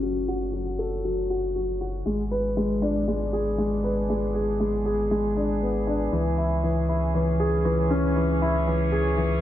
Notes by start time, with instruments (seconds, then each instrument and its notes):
Already playing: sub bass F#1, felt piano F#3 C#4 F#4 A4, string section A3 C#4 F#4 C#5
0.03 felt piano F#3
0.28 felt piano F#4
0.53 felt piano F#3
0.79 felt piano A4
1.04 felt piano F#3
1.30 felt piano F#4
1.55 felt piano F#3
1.81 felt piano F#4
2.06 sub bass G#1, felt piano G#3, string section B3
2.15 string section G#4
2.26 string section D4
2.31 felt piano B4
2.37 string section D5
2.57 felt piano G#3
2.82 felt piano D4
3.08 felt piano G#3
3.33 felt piano G#4
3.58 felt piano G#3
3.84 felt piano B4
4.10 felt piano G#3
4.34 felt piano G#4
4.60 felt piano G#3
4.86 felt piano G#4
5.11 felt piano G#3
5.37 felt piano D4
5.62 felt piano B3
5.87 felt piano D4
6.13 sub bass C#2, felt piano E3, string section E3
6.33 string section C#4
6.38 felt piano E4
6.44 string section C#5
6.64 felt piano E3
6.89 felt piano E4
7.15 felt piano E3
7.40 felt piano G#4
7.65 felt piano E3
7.90 felt piano C#4
8.16 felt piano E3
8.42 felt piano E4
8.67 felt piano E3
8.92 felt piano G#4
9.17 felt piano E3